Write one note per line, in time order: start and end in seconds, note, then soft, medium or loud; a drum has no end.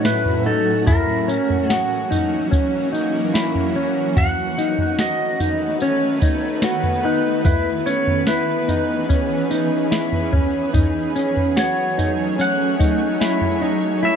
0.00 0.84 A2 medium
0.00 0.84 F#3 medium
0.00 0.84 A3 medium
0.00 0.84 C#4 medium
0.00 7.41 F#4 medium
0.05 0.46 E4 medium
0.05 0.46 B4 loud
0.05 snare loud
0.05 tambourine medium
0.26 floor tom medium
0.46 0.87 D#4 medium
0.46 0.85 A4 medium
0.86 4.14 E3 medium
0.86 4.14 F#3 medium
0.86 4.13 A#3 medium
0.86 4.13 C#4 medium
0.86 1.29 E4 loud
0.86 1.68 A#4 medium
0.86 kick loud
0.86 floor tom loud
0.86 tambourine medium
1.28 1.70 C#4 medium
1.28 tambourine medium
1.50 floor tom medium
1.68 2.11 F#4 medium
1.68 2.06 G#4 medium
1.68 snare loud
1.68 tambourine medium
2.11 2.51 D#4 medium
2.11 floor tom medium
2.11 tambourine medium
2.51 2.92 C#4 medium
2.51 kick medium
2.51 tambourine medium
2.93 3.34 D#4 medium
2.93 tambourine medium
3.34 3.75 E4 medium
3.34 snare loud
3.34 tambourine medium
3.55 floor tom medium
3.76 4.17 C#4 medium
4.17 7.42 D#3 medium
4.17 7.42 A3 medium
4.17 10.70 B3 medium
4.17 4.58 F#4 medium
4.17 10.71 B4 medium
4.17 5.02 F#5 loud
4.17 kick loud
4.17 floor tom loud
4.17 tambourine medium
4.58 4.99 D#4 medium
4.58 tambourine medium
4.78 floor tom medium
4.99 5.40 F#4 medium
4.99 5.84 D#5 loud
4.99 snare loud
4.99 tambourine medium
5.40 5.81 D#4 medium
5.40 floor tom medium
5.40 tambourine medium
5.80 6.22 C#4 medium
5.80 7.05 C#5 loud
5.80 tambourine medium
6.22 6.63 D#4 medium
6.22 kick medium
6.22 tambourine medium
6.62 7.05 F#4 medium
6.62 snare loud
6.62 tambourine medium
6.83 floor tom medium
7.05 7.46 D#4 medium
7.05 7.44 B4 medium
7.45 10.71 E3 medium
7.45 10.71 C#4 medium
7.45 7.86 E4 medium
7.45 13.99 G#4 medium
7.45 7.87 B4 medium
7.45 kick loud
7.45 floor tom loud
7.45 tambourine medium
7.86 8.28 C#4 medium
7.86 8.29 C#5 medium
7.86 tambourine medium
8.07 floor tom medium
8.27 8.69 E4 medium
8.27 9.05 B4 medium
8.27 snare loud
8.27 tambourine medium
8.68 9.09 D#4 medium
8.68 floor tom medium
8.68 tambourine medium
9.09 9.50 C#4 medium
9.09 kick medium
9.09 tambourine medium
9.51 9.92 D#4 medium
9.51 tambourine medium
9.91 10.33 E4 medium
9.91 snare loud
9.91 tambourine medium
10.12 floor tom medium
10.33 10.73 C#4 medium
10.33 kick medium
10.33 floor tom medium
10.74 14.00 F#3 medium
10.74 13.99 A3 medium
10.74 13.99 C#4 medium
10.74 11.15 D#4 medium
10.74 14.16 C#5 medium
10.74 kick loud
10.74 floor tom loud
10.74 tambourine medium
11.16 11.56 C#4 medium
11.16 tambourine medium
11.37 floor tom medium
11.56 11.97 F#4 medium
11.56 12.42 C#5 medium
11.56 snare loud
11.56 tambourine medium
11.98 12.38 D#4 medium
11.98 floor tom medium
11.98 tambourine medium
12.39 12.79 C#4 medium
12.39 14.05 F#5 loud
12.39 tambourine medium
12.79 13.21 D#4 medium
12.79 kick medium
12.79 tambourine medium
13.21 13.62 E4 medium
13.21 snare loud
13.21 tambourine medium
13.41 floor tom medium
13.62 14.03 D#4 medium
14.03 14.16 E4 medium
14.03 14.16 E5 loud